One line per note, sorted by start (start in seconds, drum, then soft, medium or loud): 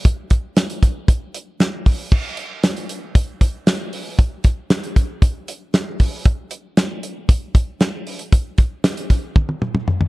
0.05 kick loud
0.05 closed hi-hat medium
0.30 kick medium
0.30 closed hi-hat medium
0.57 snare loud
0.57 closed hi-hat medium
0.70 closed hi-hat soft
0.83 kick medium
0.83 closed hi-hat medium
1.08 kick loud
1.08 closed hi-hat medium
1.34 closed hi-hat medium
1.60 snare medium
1.60 closed hi-hat medium
1.86 kick medium
1.86 open hi-hat medium
2.12 kick loud
2.12 crash medium
2.37 closed hi-hat medium
2.63 snare loud
2.63 closed hi-hat loud
2.77 closed hi-hat soft
2.89 closed hi-hat medium
3.15 kick loud
3.15 closed hi-hat loud
3.41 kick loud
3.41 closed hi-hat loud
3.67 snare loud
3.67 closed hi-hat medium
3.93 open hi-hat medium
4.19 kick loud
4.19 closed hi-hat medium
4.44 kick loud
4.44 closed hi-hat medium
4.70 snare loud
4.70 closed hi-hat medium
4.83 closed hi-hat soft
4.96 kick loud
4.96 closed hi-hat medium
5.22 kick loud
5.22 closed hi-hat medium
5.48 closed hi-hat medium
5.74 snare loud
5.74 closed hi-hat medium
6.00 kick medium
6.00 open hi-hat medium
6.25 kick loud
6.25 closed hi-hat loud
6.51 closed hi-hat medium
6.77 snare loud
6.77 closed hi-hat loud
7.03 closed hi-hat medium
7.29 kick loud
7.29 closed hi-hat loud
7.55 kick loud
7.55 closed hi-hat medium
7.81 snare loud
7.81 closed hi-hat medium
8.07 open hi-hat medium
8.19 closed hi-hat medium
8.32 kick loud
8.32 closed hi-hat loud
8.58 kick loud
8.58 closed hi-hat medium
8.84 snare loud
8.84 closed hi-hat medium
8.97 closed hi-hat medium
9.10 kick medium
9.10 closed hi-hat medium
9.36 kick loud
9.36 high tom medium
9.49 high tom medium
9.62 mid tom medium
9.75 mid tom medium
9.88 mid tom medium
10.01 mid tom medium